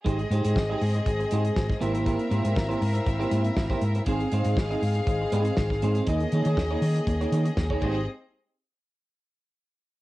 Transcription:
<<
  \new Staff \with { instrumentName = "String section" } { \time 4/4 \key aes \major \tempo 4 = 120 <c' aes' ees''>2.~ <c' aes' ees''>8 <c' bes' e''>8~ | <c' bes' e''>1 | <c' aes' f''>1 | <bes aes' ees''>2.~ <bes aes' ees''>8 <c' aes' ees''>8 |
r1 | }
  \new Staff \with { instrumentName = "Clean electric guitar" } { \time 4/4 \key aes \major <aes ees' g' c''>8 <aes ees' g' c''>16 <aes ees' g' c''>16 r16 <aes ees' g' ees''>8 r8. <aes ees' g' c''>8 r8 <bes e' g' c''>16 <bes e' g' c''>16 | <bes e' g' c''>8 <bes e' g' c''>16 <bes e' g' c''>16 r16 <bes e' g' c''>8 r8 <bes e' g' c''>16 <bes e' g' c''>16 r8 <bes e' g' c''>8 r16 | <c' ees' aes' c''>8 <c' ees' aes' c''>16 <c' ees' aes' c''>16 r16 <c' ees' aes' ees''>8 r8. <c' ees' aes' c''>8 r8 <c' ees' aes' c''>16 <c' ees' aes' c''>16 | <bes ees' aes' ees''>8 <bes ees' aes' des''>16 <bes ees' aes' des''>16 r16 <bes ees' aes' des''>8 r8 <bes ees' aes' des''>16 <bes ees' aes' des''>16 r8 <bes ees' aes' des''>16 <aes ees' g' c''>16 r16 |
r1 | }
  \new Staff \with { instrumentName = "French horn section" } { \time 4/4 \key aes \major << { <aes aes'>2.~ <aes aes'>8 <bes e'>8~ | <bes e'>1 | <aes aes'>1 | <ees aes'>2.~ <ees aes'>8 <aes g' c''>8 |
r1 | } \\ { c'1~ | c'1 | ees'1 | des'2.~ des'8 r8 |
r1 | } >> }
  \new Staff \with { instrumentName = "Fingered electric bass" } { \clef bass \time 4/4 \key aes \major aes,,8 aes,16 aes,16 aes,,8 aes,8 aes,,8 aes,8 aes,,8 aes,,8~ | aes,,8 aes,16 aes,16 aes,,8 aes,8 aes,,8 aes,8 aes,,8 aes,8 | aes,,8 aes,16 aes,16 aes,,8 aes,8 aes,,8 aes,8 aes,,8 aes,8 | ees,8 ees16 ees16 ees,8 ees8 ees,8 ees8 ees,8 aes,,8 |
r1 | }
  \new DrumStaff \with { instrumentName = "Drums" } \drummode { \time 4/4 <hh bd>16 hh16 hh16 hh16 <bd sn>8 hho16 hh16 <hh bd>16 hh16 hh16 hh16 <bd sn>16 <bd sn>16 hh16 hh16 | <hh bd>16 hh16 hh16 hh16 <bd sn>16 hh16 hho16 hh16 <hh bd>16 hh16 hh16 hh16 <bd sn>16 <hh bd sn>16 hh16 hh16 | <hh bd>16 hh16 hh16 hh16 <bd sn>16 hh16 hho16 hh16 <hh bd>8 hh16 hh16 <bd sn>16 <bd sn>16 hh16 hh16 | <hh bd>16 hh16 hh16 hh16 <bd sn>8 hho16 hh16 <hh bd>16 hh16 hh16 hh16 <bd sn>16 bd16 <cymc bd>8 |
r4 r4 r4 r4 | }
>>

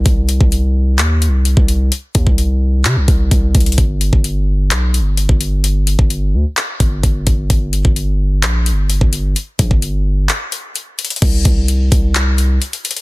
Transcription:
<<
  \new Staff \with { instrumentName = "808-style bass" } { \clef bass \time 4/4 \key c \minor \tempo 4 = 129 c,8. c,4~ c,16 ees,8~ ees,32 c,8~ c,32 c,8. | r8 ees,16 c,4~ c,16 c16 c,16 c,8 c,8 c,8 | g,,8. g,,4~ g,,16 b,,8~ b,,32 g,,8~ g,,32 g,,8.~ | g,,8. g,,8. d,16 r8. g,,8 g,,8 g,,8 |
g,,8. g,,4~ g,,16 bes,,8~ bes,,32 g,,8~ g,,32 g,,8. | r8 bes,,16 g,,4~ g,,16 r2 | c,8 c,4 c,4. r4 | }
  \new DrumStaff \with { instrumentName = "Drums" } \drummode { \time 4/4 <hh bd>8 hh16 bd16 hh4 <hc hh>8 hh8 hh16 bd16 hh8 | hh8 <hh bd>16 bd16 hh4 <hc hh>8 <hh bd>8 <hh bd>8 <hh hho bd>32 hh32 hh32 hh32 | <hh bd>8 hh16 bd16 hh4 <hc hh>8 hh8 hh16 bd16 hh8 | hh8 hh16 bd16 hh4 <hc hh>8 <hh bd>8 <hh bd>8 <hh bd>8 |
<hh bd>8 hh16 bd16 hh4 <hc hh>8 hh8 hh16 bd16 hh8 | hh8 <hh bd>16 bd16 hh4 <hc hh>8 hh8 hh8 <hh hho>32 hh32 hh32 hh32 | <cymc hh bd>8 <hh bd>8 hh8 <hh bd>8 <hc hh>8 hh8 hh16 hh16 hh32 hh32 hh16 | }
>>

